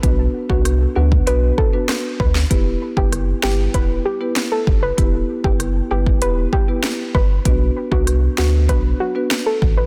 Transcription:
<<
  \new Staff \with { instrumentName = "Synth pluck" } { \time 4/4 \key e \minor \tempo 4 = 97 r8. fis'16 r8 fis'16 r16 b'16 r16 a'16 r8. b'16 r16 | r8. g'16 r8 g'16 r16 b'16 r16 g'16 r8 a'16 r16 b'16 | r8. g'16 r8 g'16 r16 b'16 r16 g'16 r8. b'16 r16 | r8. fis'16 r8 fis'16 r16 b'16 r16 fis'16 r8 a'16 r16 b'16 | }
  \new Staff \with { instrumentName = "Marimba" } { \time 4/4 \key e \minor <b d' fis' b'>16 r8 <b d' fis' b'>16 r8 <b d' fis' b'>16 r16 <b d' fis' b'>8. <b d' fis' b'>16 r4 | <b e' g' b'>16 r8 <b e' g' b'>16 r8 <b e' g' b'>16 r16 <b e' g' b'>8. <b e' g' b'>16 r4 | <b e' g' b'>16 r8 <b e' g' b'>16 r8 <b e' g' b'>16 r16 <b e' g' b'>8. <b e' g' b'>16 r4 | <b d' fis' b'>16 r8 <b d' fis' b'>16 r8 <b d' fis' b'>16 r16 <b d' fis' b'>8. <b d' fis' b'>16 r4 | }
  \new Staff \with { instrumentName = "Sub bass" } { \clef bass \time 4/4 \key e \minor b,,8 r16 c,8. d,8 b,,8 r4 d,8 | e,,8 r16 fis,,8. g,,8 e,,8 r4 fis,,8 | e,,8 r16 fis,,8. g,,8 e,,8 r4 g,,8 | b,,8 r16 c,8. d,8 b,,8 r4 a,,8 | }
  \new DrumStaff \with { instrumentName = "Drums" } \drummode { \time 4/4 <hh bd>8. bd16 <hh ss>8. bd16 hh8 bd8 <hh ss sn>8 bd16 sn16 | <hh bd>8. bd16 <hh ss>8 sn8 <hh bd>4 <hh sn>8 bd8 | <hh bd>8. bd16 <hh ss>8. bd16 hh8 bd8 <hh sn>8 bd8 | <hh bd>8. bd16 <hh ss>8 sn8 <hh bd>4 <hh sn>8 bd8 | }
>>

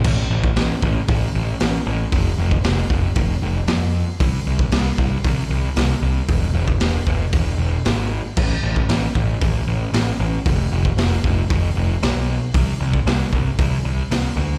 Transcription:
<<
  \new Staff \with { instrumentName = "Picked electric bass" } { \clef bass \time 4/4 \key e \mixolydian \tempo 4 = 115 a,,8 a,,8 a,,8 a,,8 a,,8 a,,8 a,,8 a,,8 | f,,8 f,,8 f,,8 f,,8 f,,8 f,,8 f,4 | c,8 c,8 c,8 c,8 c,8 c,8 c,8 c,8 | e,,8 e,,8 e,,8 e,,8 e,,8 e,,8 gis,,4 |
a,,8 a,,8 a,,8 a,,8 a,,8 a,,8 a,,8 a,,8 | f,,8 f,,8 f,,8 f,,8 f,,8 f,,8 b,,4 | c,8 c,8 c,8 c,8 c,8 c,8 c,8 d,8 | }
  \new DrumStaff \with { instrumentName = "Drums" } \drummode { \time 4/4 <cymc bd>8. bd16 <hho sn>8 bd8 <hho bd>4 <hho sn>4 | <hho bd>8. bd16 <hho sn>8 bd8 <hho bd>4 <hho sn>4 | <hho bd>8. bd16 <hho sn>8 bd8 <hho bd>4 <hho sn>4 | <hho bd>8. bd16 <hho sn>8 bd8 <hho bd>4 <hho sn>4 |
<cymc bd>8. bd16 <hho sn>8 bd8 <hho bd>4 <hho sn>4 | <hho bd>8. bd16 <hho sn>8 bd8 <hho bd>4 <hho sn>4 | <hho bd>8. bd16 <hho sn>8 bd8 <hho bd>4 <hho sn>4 | }
>>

